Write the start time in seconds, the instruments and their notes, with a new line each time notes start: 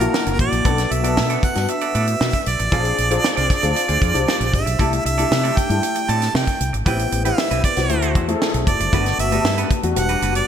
Already playing: grand piano A4 A5, harmonica A#4
0.00 grand piano A#3 D4 E4 F#4, muted clean electric guitar stroke, closed hi-hat
0.14 muted clean electric guitar stroke, snare
0.26 fretless electric bass F#1, muted clean electric guitar stroke, closed hi-hat
0.39 fretless electric bass A1, harmonica D5, kick, closed hi-hat
0.52 fretless electric bass A#1, muted clean electric guitar stroke, closed hi-hat
0.64 fretless electric bass B1, grand piano B3 D4 F#4 A4, clean electric guitar B3 F#4 A4 D5, kick, closed hi-hat
0.78 muted clean electric guitar stroke, snare, closed hi-hat
0.91 fretless electric bass B1, harmonica E5, muted clean electric guitar stroke, closed hi-hat
1.03 grand piano B3 D4 F#4 A4, clean electric guitar B3 F#4 A4 D5, closed hi-hat
1.17 fretless electric bass B2, muted clean electric guitar stroke, snare
1.30 clean electric guitar B3 F#4 A4 D5, closed hi-hat
1.43 harmonica F#5, muted clean electric guitar stroke, kick, closed hi-hat
1.55 fretless electric bass G2, grand piano B3 D4 F#4 B4, muted clean electric guitar stroke, snare, closed hi-hat
1.68 harmonica E5, muted clean electric guitar stroke, closed hi-hat
1.81 clean electric guitar B3 F#4 A4 D5, closed hi-hat
1.94 fretless electric bass A2, clean electric guitar B3 F#4 A4 D5, closed hi-hat
2.07 closed hi-hat
2.20 fretless electric bass B2, muted clean electric guitar stroke, snare
2.33 muted clean electric guitar stroke, kick, closed hi-hat
2.46 fretless electric bass B1, harmonica D5, closed hi-hat
2.59 fretless electric bass A1, muted clean electric guitar stroke, closed hi-hat
2.71 fretless electric bass A#1, grand piano C4 D4 F4 G#4, clean electric guitar C4 F4 G#4 D5, kick, closed hi-hat
2.85 muted clean electric guitar stroke, closed hi-hat
2.98 fretless electric bass A#1, muted clean electric guitar stroke, closed hi-hat
3.10 grand piano C4 D4 F4 G#4, clean electric guitar C4 F4 G#4 D5, closed hi-hat
3.24 snare
3.37 fretless electric bass C2, clean electric guitar C4 F4 G#4 D5, closed hi-hat
3.50 muted clean electric guitar stroke, kick, snare, closed hi-hat
3.62 fretless electric bass D2, grand piano C4 D4 F4 G#4, muted clean electric guitar stroke, closed hi-hat
3.76 muted clean electric guitar stroke, closed hi-hat
3.88 fretless electric bass D2, clean electric guitar C4 F4 G#4 D5, closed hi-hat
4.01 fretless electric bass F2, clean electric guitar C4 F4 G#4 D5, kick, closed hi-hat
4.14 fretless electric bass C2, grand piano C4 D4 F4 G4, muted clean electric guitar stroke, closed hi-hat
4.27 muted clean electric guitar stroke, snare
4.40 fretless electric bass A#1, muted clean electric guitar stroke, closed hi-hat
4.53 fretless electric bass G#1, harmonica E5, kick, closed hi-hat
4.66 fretless electric bass B1, muted clean electric guitar stroke, closed hi-hat
4.79 fretless electric bass C2, grand piano A3 D4 E4 G4, clean electric guitar C4 E4 A4 D5, kick, closed hi-hat
4.92 muted clean electric guitar stroke, closed hi-hat
5.05 fretless electric bass C2, harmonica E5, muted clean electric guitar stroke, closed hi-hat
5.17 grand piano A3 D4 E4 G4, clean electric guitar C4 E4 A4 D5, closed hi-hat
5.31 fretless electric bass C3, muted clean electric guitar stroke, snare
5.44 clean electric guitar C4 E4 A4 D5, closed hi-hat
5.57 harmonica G5, muted clean electric guitar stroke, kick, closed hi-hat
5.69 fretless electric bass G2, grand piano A3 D4 E4 G4, muted clean electric guitar stroke, closed hi-hat
5.83 muted clean electric guitar stroke, closed hi-hat
5.95 muted clean electric guitar stroke, closed hi-hat
6.08 fretless electric bass A2, clean electric guitar C4 E4 A4 D5, harmonica A5, closed hi-hat
6.22 muted clean electric guitar stroke, snare, closed hi-hat
6.34 fretless electric bass C3, harmonica G5, muted clean electric guitar stroke, snare
6.47 muted clean electric guitar stroke, kick, closed hi-hat
6.60 fretless electric bass C2, closed hi-hat
6.73 fretless electric bass G#1, muted clean electric guitar stroke, closed hi-hat
6.86 fretless electric bass A1, clean electric guitar G3 C4 E4 B4, grand piano B3 C4 E4 G4, harmonica G5, kick, closed hi-hat
6.99 muted clean electric guitar stroke, closed hi-hat
7.12 fretless electric bass A1, muted clean electric guitar stroke, closed hi-hat
7.24 clean electric guitar G3 C4 E4 B4, grand piano B3 C4 E4 G4, harmonica E5, closed hi-hat
7.38 muted clean electric guitar stroke, snare
7.51 fretless electric bass B1, clean electric guitar G3 C4 E4 B4, closed hi-hat
7.64 harmonica D5, muted clean electric guitar stroke, kick, closed hi-hat
7.76 fretless electric bass C2, grand piano B3 C4 E4 F#4, muted clean electric guitar stroke, snare, closed hi-hat
7.89 fretless electric bass D2, grand piano A3 C4 E4 F#4, muted clean electric guitar stroke, closed hi-hat
8.02 clean electric guitar A3 E4 F#4 C5, closed hi-hat
8.15 fretless electric bass E2, clean electric guitar A3 E4 F#4 C5, kick, closed hi-hat
8.28 grand piano A3 C4 E4 G#4, muted clean electric guitar stroke, closed hi-hat
8.35 grand piano A4
8.42 muted clean electric guitar stroke, snare
8.54 fretless electric bass B1, muted clean electric guitar stroke, closed hi-hat
8.67 fretless electric bass F1, harmonica D5, kick, closed hi-hat
8.79 fretless electric bass F#1, muted clean electric guitar stroke, closed hi-hat
8.92 fretless electric bass G1, grand piano A3 B3 D4 F#4, clean electric guitar B3 D4 F#4 B4, kick, closed hi-hat
9.06 muted clean electric guitar stroke, snare, closed hi-hat
9.18 fretless electric bass G1, harmonica E5, muted clean electric guitar stroke, closed hi-hat
9.31 grand piano A3 B3 D4 G4, clean electric guitar B3 D4 F#4 B4, closed hi-hat
9.44 fretless electric bass G2, muted clean electric guitar stroke, snare
9.58 clean electric guitar B3 D4 F#4 B4, closed hi-hat
9.71 muted clean electric guitar stroke, kick, closed hi-hat
9.83 fretless electric bass E2, grand piano A3 B3 D4 F#4, muted clean electric guitar stroke, closed hi-hat
9.96 fretless electric bass E1, grand piano G3 B3 D4 F#4, harmonica F#5, muted clean electric guitar stroke, closed hi-hat
10.09 clean electric guitar G3 D4 F#4 B4, closed hi-hat
10.22 fretless electric bass F#1, clean electric guitar G3 D4 F#4 B4, closed hi-hat
10.35 harmonica D5, muted clean electric guitar stroke, closed hi-hat